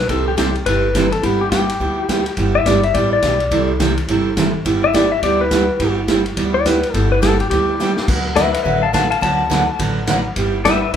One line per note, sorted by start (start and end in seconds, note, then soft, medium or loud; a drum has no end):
0.09 0.55 C2 medium
0.09 0.29 C3 medium
0.09 0.29 E3 medium
0.09 0.29 G3 medium
0.09 0.29 C4 medium
0.09 0.29 E4 medium
0.09 0.29 A4 medium
0.09 0.27 A4 medium
0.09 kick soft
0.09 ride medium
0.28 0.37 G4 loud
0.37 0.48 C3 medium
0.37 0.49 E3 medium
0.37 0.49 G3 medium
0.37 0.49 C4 medium
0.37 0.49 E4 medium
0.37 0.55 G4 loud
0.37 0.49 A4 medium
0.37 kick soft
0.37 snare medium
0.37 hi-hat pedal medium
0.37 ride medium
0.55 ride soft
0.66 1.12 G1 medium
0.66 0.86 C3 medium
0.66 0.86 E3 medium
0.66 0.86 G3 medium
0.66 0.86 C4 medium
0.66 0.86 E4 medium
0.66 0.86 A4 medium
0.66 1.11 B4 loud
0.66 kick soft
0.66 ride medium
0.95 1.06 C3 medium
0.95 1.06 E3 medium
0.95 1.06 G3 medium
0.95 1.06 C4 medium
0.95 1.06 E4 medium
0.95 1.06 A4 medium
0.95 kick soft
0.95 snare medium
0.95 hi-hat pedal medium
0.95 ride medium
1.12 1.23 A4 medium
1.12 ride medium
1.23 1.69 G1 medium
1.23 1.43 G3 medium
1.23 1.43 B3 medium
1.23 1.40 E4 medium
1.23 1.43 E4 medium
1.23 1.43 G4 medium
1.23 kick soft
1.23 ride medium
1.41 1.51 G4 loud
1.52 1.63 G3 medium
1.52 1.63 B3 medium
1.52 1.63 E4 medium
1.52 2.35 G4 loud
1.52 1.63 G4 medium
1.52 kick soft
1.52 snare medium
1.52 hi-hat pedal medium
1.52 ride medium
1.69 ride medium
1.80 2.26 D2 medium
1.80 2.00 G3 medium
1.80 2.00 B3 medium
1.80 2.00 E4 medium
1.80 2.00 G4 medium
1.80 kick soft
2.09 2.20 G3 medium
2.09 2.20 B3 medium
2.09 2.20 E4 medium
2.09 2.20 G4 medium
2.09 kick soft
2.09 snare medium
2.09 hi-hat pedal medium
2.09 ride medium
2.26 ride medium
2.37 2.60 G1 medium
2.37 2.57 G3 medium
2.37 2.57 B3 medium
2.37 2.57 E4 medium
2.37 2.58 G4 medium
2.37 kick soft
2.37 ride medium
2.55 2.66 E5 loud
2.66 2.90 G1 medium
2.66 2.77 G3 medium
2.66 2.77 B3 medium
2.66 2.77 E4 medium
2.66 2.78 G4 medium
2.66 2.83 D5 loud
2.66 kick soft
2.66 snare medium
2.66 hi-hat pedal medium
2.66 ride medium
2.83 2.95 E5 loud
2.83 ride soft
2.94 3.19 A1 medium
2.94 3.14 G3 medium
2.94 3.14 B3 medium
2.94 3.14 E4 medium
2.94 3.14 G4 medium
2.94 3.11 D5 medium
2.94 kick soft
2.94 ride medium
3.13 3.68 D5 medium
3.22 3.47 B1 medium
3.22 3.34 G3 medium
3.22 3.34 B3 medium
3.22 3.34 E4 medium
3.22 3.35 G4 medium
3.22 kick soft
3.22 snare medium
3.22 hi-hat pedal medium
3.22 ride medium
3.40 ride medium
3.51 3.97 C2 medium
3.51 3.71 C3 medium
3.51 3.71 E3 medium
3.51 3.71 G3 medium
3.51 3.71 C4 medium
3.51 3.71 E4 medium
3.51 3.72 A4 medium
3.51 kick soft
3.51 ride medium
3.80 3.91 C3 medium
3.80 3.91 E3 medium
3.80 3.91 G3 medium
3.80 3.91 C4 medium
3.80 3.91 E4 medium
3.80 3.91 A4 medium
3.80 kick soft
3.80 snare medium
3.80 hi-hat pedal medium
3.80 ride medium
3.97 ride medium
4.08 4.54 G1 medium
4.08 4.28 C3 medium
4.08 4.28 E3 medium
4.08 4.29 G3 medium
4.08 4.29 C4 medium
4.08 4.29 E4 medium
4.08 4.29 A4 medium
4.08 kick soft
4.08 ride medium
4.37 4.48 C3 medium
4.37 4.48 E3 medium
4.37 4.48 G3 medium
4.37 4.48 C4 medium
4.37 4.49 E4 medium
4.37 4.49 A4 medium
4.37 kick soft
4.37 snare medium
4.37 hi-hat pedal medium
4.37 ride medium
4.65 5.11 G1 medium
4.65 4.85 G3 medium
4.65 4.85 B3 medium
4.65 4.85 E4 medium
4.65 4.85 G4 medium
4.65 kick soft
4.65 ride medium
4.84 4.94 E5 loud
4.93 5.05 G3 medium
4.93 5.05 B3 medium
4.93 5.05 E4 medium
4.93 5.05 G4 medium
4.93 5.12 D5 loud
4.93 kick soft
4.93 snare medium
4.93 hi-hat pedal soft
4.93 ride medium
5.12 5.22 E5 loud
5.23 5.68 D2 medium
5.23 5.42 G3 medium
5.23 5.43 B3 medium
5.23 5.43 E4 medium
5.23 5.43 G4 medium
5.23 5.40 D5 medium
5.23 kick soft
5.23 ride medium
5.41 5.96 B4 loud
5.51 5.62 G3 medium
5.51 5.62 B3 medium
5.51 5.63 E4 medium
5.51 5.63 G4 medium
5.51 kick soft
5.51 snare medium
5.51 hi-hat pedal medium
5.51 ride medium
5.80 6.25 G1 medium
5.80 5.99 G3 medium
5.80 6.00 B3 medium
5.80 6.00 E4 medium
5.80 6.00 G4 medium
5.80 kick soft
5.80 ride medium
6.08 6.19 G3 medium
6.08 6.19 B3 medium
6.08 6.20 E4 medium
6.08 6.20 G4 medium
6.08 kick soft
6.08 snare medium
6.08 hi-hat pedal medium
6.08 ride medium
6.26 ride medium
6.37 6.83 D2 medium
6.37 6.56 G3 medium
6.37 6.57 B3 medium
6.37 6.57 E4 medium
6.37 6.57 G4 medium
6.37 kick soft
6.37 ride medium
6.54 6.65 D5 medium
6.65 6.76 G3 medium
6.65 6.77 B3 medium
6.65 6.77 E4 medium
6.65 6.77 G4 medium
6.65 6.93 B4 medium
6.65 kick soft
6.65 snare medium
6.65 hi-hat pedal medium
6.65 ride medium
6.83 ride medium
6.93 7.40 G1 medium
6.93 7.14 G3 medium
6.93 7.14 B3 medium
6.93 7.14 E4 medium
6.93 7.14 G4 medium
6.93 7.11 A4 medium
6.93 kick soft
6.93 ride medium
7.12 7.22 B4 medium
7.22 7.33 G3 medium
7.22 7.34 B3 medium
7.22 7.34 E4 medium
7.22 7.34 G4 medium
7.22 7.40 A4 loud
7.22 kick soft
7.22 snare medium
7.22 hi-hat pedal medium
7.22 ride medium
7.40 7.49 G4 medium
7.40 ride medium
7.50 7.97 D2 medium
7.50 7.71 G3 medium
7.50 7.71 B3 medium
7.50 7.71 E4 medium
7.50 8.06 G4 medium
7.50 7.71 G4 medium
7.50 kick soft
7.50 ride medium
7.79 7.91 G3 medium
7.79 7.91 B3 medium
7.79 7.91 E4 medium
7.79 7.91 G4 medium
7.79 snare soft
7.79 hi-hat pedal medium
7.97 snare medium
8.08 8.54 D2 medium
8.08 8.28 D3 medium
8.08 8.28 F#3 medium
8.08 8.28 B3 medium
8.08 8.28 F#4 medium
8.08 8.28 B4 medium
8.08 kick medium
8.08 crash medium
8.36 8.48 D3 medium
8.36 8.48 F#3 medium
8.36 8.48 B3 medium
8.36 8.48 F#4 medium
8.36 8.52 B4 loud
8.36 8.48 B4 medium
8.36 8.53 E5 loud
8.36 kick soft
8.36 snare medium
8.36 hi-hat pedal medium
8.36 ride medium
8.53 8.62 B4 medium
8.53 8.63 E5 medium
8.53 ride medium
8.63 9.11 A1 medium
8.63 8.85 D3 medium
8.63 8.85 F#3 medium
8.63 8.85 B3 medium
8.63 8.85 F#4 medium
8.63 8.81 B4 medium
8.63 8.85 B4 medium
8.63 8.82 E5 medium
8.63 kick soft
8.82 8.93 F5 medium
8.82 8.93 A5 medium
8.93 9.05 D3 medium
8.93 9.05 F#3 medium
8.93 9.05 B3 medium
8.93 9.05 F#4 medium
8.93 9.05 B4 medium
8.93 9.09 F5 medium
8.93 9.10 A5 medium
8.93 kick soft
8.93 snare medium
8.93 hi-hat pedal medium
8.93 ride medium
9.10 9.21 F5 medium
9.10 9.21 A5 medium
9.10 ride medium
9.21 9.68 D2 medium
9.21 9.41 D3 medium
9.21 9.42 F#3 medium
9.21 9.42 B3 medium
9.21 9.42 F#4 medium
9.21 9.42 B4 medium
9.21 10.06 A5 loud
9.21 kick soft
9.21 ride medium
9.50 9.61 D3 medium
9.50 9.61 F#3 medium
9.50 9.62 B3 medium
9.50 9.62 F#4 medium
9.50 9.62 B4 medium
9.50 kick soft
9.50 snare medium
9.50 hi-hat pedal medium
9.50 ride medium
9.79 10.25 A1 medium
9.79 9.99 D3 medium
9.79 9.99 F#3 medium
9.79 9.99 B3 medium
9.79 9.99 F#4 medium
9.79 9.99 B4 medium
9.79 kick soft
9.79 ride medium
10.07 10.19 D3 medium
10.07 10.19 F#3 medium
10.07 10.19 B3 medium
10.07 10.19 F#4 medium
10.07 10.19 B4 medium
10.07 kick soft
10.07 snare medium
10.07 hi-hat pedal medium
10.07 ride medium
10.36 10.82 G1 medium
10.36 10.56 G3 medium
10.36 10.56 B3 medium
10.36 10.57 E4 medium
10.36 10.57 G4 medium
10.36 kick soft
10.36 ride medium
10.65 10.76 G3 medium
10.65 10.77 B3 medium
10.65 10.77 E4 medium
10.65 10.77 G4 loud
10.65 10.81 B4 loud
10.65 10.81 E5 loud
10.65 kick soft
10.65 snare medium
10.65 hi-hat pedal medium
10.65 ride medium
10.82 10.92 B4 medium
10.82 10.93 E5 loud
10.93 10.96 D2 medium